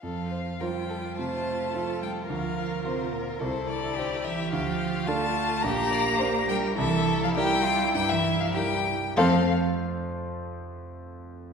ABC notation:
X:1
M:4/4
L:1/16
Q:1/4=105
K:F
V:1 name="Violin"
f4 g4 a6 g2 | f4 c2 B2 c2 d4 e2 | f4 a4 b6 g2 | e3 f g4 g e2 f g4 |
f2 z12 z2 |]
V:2 name="Violin"
A2 c2 B2 A2 c4 A4 | B8 A4 G2 G2- | G4 F4 G2 d2 c2 B2 | A4 G2 F2 E4 G2 z2 |
A2 z12 z2 |]
V:3 name="Viola"
F16- | F8 E8 | F8 G8 | E12- E2 z2 |
C2 z12 z2 |]
V:4 name="Grand piano"
F,,4 [F,Fc]4 C,4 [F,Fc]4 | D,,4 [FB]4 C,,4 [Ec]4 | D,,4 [DA]4 B,,,4 [DB]4 | C,,4 [G,EB]4 G,,4 [G,EB]4 |
[F,,F,A,Fcf]2 z12 z2 |]
V:5 name="Cello" clef=bass
F,4 G,4 A,6 G,2 | F,4 C,2 B,,2 C,2 D,4 E,2 | F,4 A,4 B,6 G,2 | E,3 F, G,4 G, E,2 F, G,4 |
F,2 z12 z2 |]